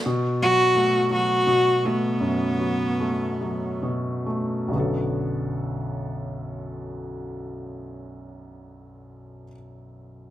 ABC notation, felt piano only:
X:1
M:3/4
L:1/8
Q:1/4=64
K:Bm
V:1 name="Felt piano" clef=bass
B,, F, A, F, B,, A, | F,, F, A, F, B,, A, | [B,,,F,,D,B,FA]6- | [B,,,F,,D,B,FA]6 |]